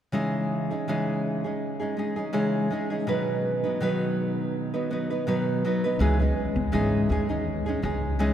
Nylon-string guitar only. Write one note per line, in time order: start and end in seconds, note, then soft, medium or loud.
0.12 0.70 C#3 medium
0.12 0.70 E3 medium
0.12 0.70 G#3 medium
0.12 0.70 C#4 medium
0.12 0.70 D#4 medium
0.12 0.69 G#4 medium
0.71 0.87 G#3 soft
0.71 0.88 C#4 soft
0.71 0.87 D#4 soft
0.71 0.87 G#4 soft
0.88 1.44 C#3 medium
0.88 1.44 E3 medium
0.88 1.44 G#3 medium
0.88 1.45 C#4 medium
0.88 1.44 D#4 medium
0.88 1.43 G#4 medium
1.44 1.81 G#3 soft
1.44 1.81 C#4 soft
1.44 1.80 D#4 soft
1.44 1.78 G#4 soft
1.80 1.95 G#3 soft
1.80 1.97 C#4 soft
1.80 1.97 D#4 soft
1.80 1.96 G#4 soft
1.97 2.17 G#3 soft
1.97 2.17 C#4 soft
1.97 2.16 D#4 soft
1.97 2.15 G#4 medium
2.16 2.32 G#3 soft
2.16 2.33 C#4 soft
2.16 2.33 D#4 soft
2.16 2.33 G#4 soft
2.33 2.70 C#3 medium
2.33 2.70 E3 medium
2.33 2.69 G#3 medium
2.33 2.70 C#4 medium
2.33 2.70 D#4 medium
2.33 2.70 G#4 medium
2.70 2.90 G#3 medium
2.70 2.91 C#4 medium
2.70 2.90 D#4 medium
2.70 2.89 G#4 medium
2.90 3.07 G#3 soft
2.90 3.07 C#4 soft
2.90 3.07 D#4 soft
2.90 3.06 G#4 soft
3.07 3.63 B2 medium
3.07 3.64 D#3 medium
3.07 3.64 F#3 medium
3.07 3.64 B3 medium
3.07 3.63 D#4 medium
3.07 3.62 B4 medium
3.64 3.80 F#3 soft
3.64 3.81 B3 soft
3.64 3.80 D#4 soft
3.64 3.80 B4 soft
3.80 4.74 B2 medium
3.80 5.27 D#3 medium
3.80 4.74 F#3 medium
3.80 4.73 B3 medium
3.80 4.73 D#4 medium
3.80 4.72 B4 medium
4.74 4.89 F#3 soft
4.74 4.90 B3 soft
4.74 4.90 D#4 soft
4.74 4.90 B4 soft
4.90 5.10 F#3 medium
4.90 5.10 B3 medium
4.90 5.10 D#4 soft
4.90 5.09 B4 medium
5.10 5.27 F#3 soft
5.10 5.27 B3 soft
5.10 5.27 D#4 soft
5.10 5.27 B4 soft
5.27 5.63 B2 medium
5.27 5.64 D#3 medium
5.27 5.63 F#3 medium
5.27 5.64 B3 medium
5.27 5.64 D#4 medium
5.27 5.64 B4 medium
5.65 5.84 F#3 medium
5.65 5.84 B3 medium
5.65 5.84 D#4 medium
5.65 5.83 B4 medium
5.84 6.00 F#3 soft
5.84 6.00 B3 soft
5.84 6.00 D#4 soft
5.84 6.00 B4 soft
6.00 6.20 C#3 medium
6.00 6.20 E3 medium
6.00 6.20 G#3 medium
6.00 6.20 C#4 medium
6.00 6.19 D#4 medium
6.00 6.18 G#4 medium
6.20 6.72 G#3 soft
6.20 6.72 C#4 soft
6.20 6.72 D#4 soft
6.20 6.73 G#4 soft
6.72 7.09 C#3 medium
6.72 7.09 E3 medium
6.72 7.08 G#3 medium
6.72 7.09 C#4 medium
6.72 7.10 D#4 medium
6.72 7.10 G#4 medium
7.09 7.30 G#3 soft
7.09 7.29 C#4 soft
7.09 7.28 D#4 medium
7.09 7.28 G#4 medium
7.29 7.67 G#3 soft
7.29 7.67 C#4 soft
7.29 7.66 D#4 soft
7.29 7.65 G#4 soft
7.66 7.81 G#3 soft
7.66 7.82 C#4 soft
7.66 7.83 D#4 soft
7.66 7.83 G#4 soft
7.82 8.18 G#3 soft
7.82 8.19 C#4 medium
7.82 8.19 D#4 medium
7.82 8.19 G#4 medium
8.19 8.34 C#3 medium
8.19 8.34 E3 medium
8.19 8.34 G#3 medium
8.19 8.34 C#4 medium
8.19 8.34 D#4 medium
8.19 8.34 G#4 medium